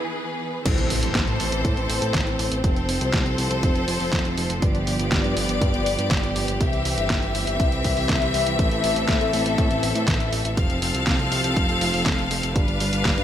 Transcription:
Already playing: string section E3 B3 G#4 B4
0.66 analog synth bass A1, string section E3 C4 A4 C5, kick, closed hi-hat, crash, impact
0.78 analog synth bass A1, closed hi-hat
0.90 analog synth bass A1, open hi-hat
1.03 analog synth bass A1, closed hi-hat
1.15 analog synth bass A1, kick, snare, clap, closed hi-hat
1.27 analog synth bass A2, closed hi-hat
1.40 analog synth bass A1, open hi-hat
1.52 analog synth bass A1, closed hi-hat
1.65 analog synth bass A2, kick, closed hi-hat
1.77 analog synth bass A1, closed hi-hat
1.90 analog synth bass A1, open hi-hat
2.02 analog synth bass A2, closed hi-hat
2.14 analog synth bass A1, kick, snare, clap, closed hi-hat
2.27 analog synth bass A1, closed hi-hat
2.39 analog synth bass A1, open hi-hat
2.52 analog synth bass A1, closed hi-hat
2.64 analog synth bass F1, string section F3 A4 C5, kick, closed hi-hat
2.76 analog synth bass F1, closed hi-hat
2.89 analog synth bass F1, open hi-hat
3.01 analog synth bass C2, closed hi-hat
3.14 analog synth bass C2, kick, snare, clap, closed hi-hat
3.26 analog synth bass C2, closed hi-hat
3.38 analog synth bass C2, open hi-hat
3.51 analog synth bass C2, closed hi-hat
3.63 analog synth bass F1, kick, closed hi-hat
3.76 analog synth bass F1, closed hi-hat
3.88 analog synth bass F1, open hi-hat
4.00 analog synth bass F1, open hi-hat
4.13 analog synth bass F1, kick, snare, clap, closed hi-hat
4.25 analog synth bass F1, closed hi-hat
4.38 analog synth bass F1, open hi-hat
4.50 analog synth bass F1, closed hi-hat
4.62 analog synth bass G1, string section B3 G4 D5, kick, closed hi-hat
4.75 analog synth bass G1, closed hi-hat
4.87 analog synth bass G1, open hi-hat
4.99 analog synth bass G1, closed hi-hat
5.12 analog synth bass G1, kick, snare, clap, closed hi-hat
5.24 analog synth bass G2, closed hi-hat
5.37 analog synth bass G1, open hi-hat
5.49 analog synth bass G1, closed hi-hat
5.61 analog synth bass G2, kick, closed hi-hat
5.74 analog synth bass G1, closed hi-hat
5.86 analog synth bass G1, open hi-hat
5.99 analog synth bass G2, closed hi-hat
6.11 analog synth bass G1, kick, snare, clap, closed hi-hat
6.23 analog synth bass G1, closed hi-hat
6.36 analog synth bass G1, open hi-hat
6.48 analog synth bass G1, closed hi-hat
6.61 analog synth bass C2, string section E3 C4 E5, kick, closed hi-hat
6.73 analog synth bass C2, closed hi-hat
6.85 analog synth bass C2, open hi-hat
6.98 analog synth bass G1, closed hi-hat
7.10 analog synth bass G1, kick, snare, clap, closed hi-hat
7.23 analog synth bass G1, closed hi-hat
7.35 analog synth bass G1, open hi-hat
7.47 analog synth bass G1, closed hi-hat
7.60 analog synth bass C2, kick, closed hi-hat
7.72 analog synth bass C2, closed hi-hat
7.84 analog synth bass C2, kick, open hi-hat
7.97 analog synth bass C2, open hi-hat
8.09 analog synth bass C2, kick, snare, clap, closed hi-hat
8.22 analog synth bass C2, closed hi-hat
8.34 analog synth bass C2, open hi-hat
8.47 analog synth bass C2, closed hi-hat
8.59 analog synth bass A1, string section A4, kick, closed hi-hat
8.71 analog synth bass A1, closed hi-hat
8.84 analog synth bass A1, open hi-hat
8.96 analog synth bass A1, closed hi-hat
9.09 analog synth bass A1, kick, snare, clap, closed hi-hat
9.21 analog synth bass A2, closed hi-hat
9.33 analog synth bass A1, open hi-hat
9.46 analog synth bass A1, closed hi-hat
9.58 analog synth bass A2, kick, closed hi-hat
9.71 analog synth bass A1, closed hi-hat
9.83 analog synth bass A1, open hi-hat
9.95 analog synth bass A2, closed hi-hat
10.08 analog synth bass A1, kick, snare, clap, closed hi-hat
10.20 analog synth bass A1, closed hi-hat
10.32 analog synth bass A1, open hi-hat
10.45 analog synth bass A1, closed hi-hat
10.57 analog synth bass F1, string section F3 C4 A4 F5, kick, closed hi-hat
10.70 analog synth bass F1, closed hi-hat
10.82 analog synth bass F1, open hi-hat
10.94 analog synth bass C2, closed hi-hat
11.07 analog synth bass C2, kick, snare, clap, closed hi-hat
11.19 analog synth bass C2, closed hi-hat
11.32 analog synth bass C2, open hi-hat
11.44 analog synth bass C2, closed hi-hat
11.56 analog synth bass F1, kick, closed hi-hat
11.69 analog synth bass F1, closed hi-hat
11.81 analog synth bass F1, open hi-hat
11.94 analog synth bass F1, open hi-hat
12.06 analog synth bass F1, kick, snare, clap, closed hi-hat
12.19 analog synth bass F1, closed hi-hat
12.31 analog synth bass F1, open hi-hat
12.43 analog synth bass F1, closed hi-hat
12.56 analog synth bass G1, string section G3 D4 B4 F5, kick, closed hi-hat
12.68 analog synth bass G1, closed hi-hat
12.80 analog synth bass G1, open hi-hat
12.93 analog synth bass G1, closed hi-hat
13.05 analog synth bass G1, kick, snare, clap, closed hi-hat
13.18 analog synth bass G2, closed hi-hat

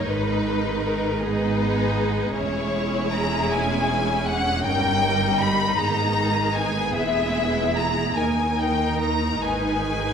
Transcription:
Already playing: double bass section G1, cello section G2, viola section A#3, violin section D#4 C#5
0.08 double bass section G#1, cello section G#2, viola section D#3 G#3, violin section B4
0.85 violin section A#4
1.22 viola section G#3 B3, violin section D#4 G#4 B4
2.34 double bass section E1, cello section E2, viola section G#3 C#4, violin section E4 G#4 C#5
3.11 violin section A#5
3.50 violin section G#5
4.26 violin section F#5
4.64 double bass section G1, cello section G2, viola section G3, violin section D#4 A#4 G5
5.39 violin section B5
5.77 double bass section G#1, cello section G#2, viola section D#3 B3, violin section G#4 A#5
6.54 violin section G#5
6.95 double bass section E1, cello section E2, viola section G#3, violin section E4 E5
7.76 violin section A#5
8.16 cello section D#2, double bass section D#2, viola section D#3 D#4, violin section A#4 G#5
8.58 violin section G5
9.00 violin section A#5
9.43 double bass section G#1, cello section G#2, violin section G#4 B4 G#5

